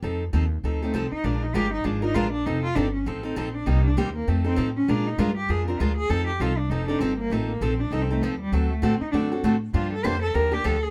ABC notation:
X:1
M:4/4
L:1/8
Q:"Swing" 1/4=198
K:Fmix
V:1 name="Cello"
z4 z A, C E | D E G E D E F D | E F D _D C3 =D | E D C B, A, C z _D |
D E F G _A C F A | A G F D E D C B, | A, B, C D (3E C A, F, G, | ^F, A, C E D z3 |
F A c A B G A _A |]
V:2 name="Steel-string acoustic guitar"
[F,CEA] z [F,CEA] z [F,CEA] [CEA] [F,CEA] z | [F,_A,DFB] z [F,A,DFB] z [F,A,DFB] [DFB] [F,A,DFB] z | [F,CEA] z [F,CEA] z [F,CEA] [CEA] [F,CEA] z | [C,G,B,EG] z [C,G,B,EG] z [F,CEA] [CEA] [F,CEA] z |
[F,_A,DFB] z [F,A,DFB] z [F,A,DFB] [DFB] [F,A,DFB] z | [F,CEA] z [F,CEA] z [F,CEA] [CEA] [F,CEA] z | [F,CEA] z [F,CEA] z [F,CEA] [CEA] [F,CEA] z | [D,A,C^FA] z [D,A,CFA] z [D,A,CFA] [CFA] [D,A,CFA] z |
[D,F,B,DG] z [D,F,B,DG] z [D,F,B,DG] [B,DG] [D,F,B,DG] z |]
V:3 name="Upright bass" clef=bass
F,,2 E,,2 D,,2 C,, z | B,,,2 G,,,2 _A,,,2 B,,,2 | F,,,2 G,,,2 A,,,2 B,,,2 | C,,2 E,,2 F,,2 A,,2 |
B,,2 G,,2 F,,2 D,,2 | F,,2 C,,2 F,,,2 G,,,2 | A,,,2 B,,,2 C,,2 E,,2 | D,,2 A,, z ^F,,2 A,,2 |
G,,2 F,,2 E,,2 D,,2 |]